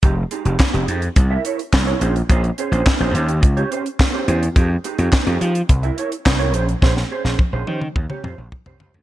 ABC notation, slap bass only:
X:1
M:4/4
L:1/16
Q:1/4=106
K:Fm
V:1 name="Slap bass" clef=bass
F,,,2 z F,,, z F,,, F,,2 C,,2 z2 C,,2 B,,,2 | B,,,2 z B,,, z B,,, E,,2 D,,2 z4 =E,,2 | F,,2 z F,, z F,, F,2 C,,2 z2 C,,2 B,,,2 | B,,,2 z B,,, z B,,, E,2 E,, z F,, B,,, z C,, D,, =D,, |]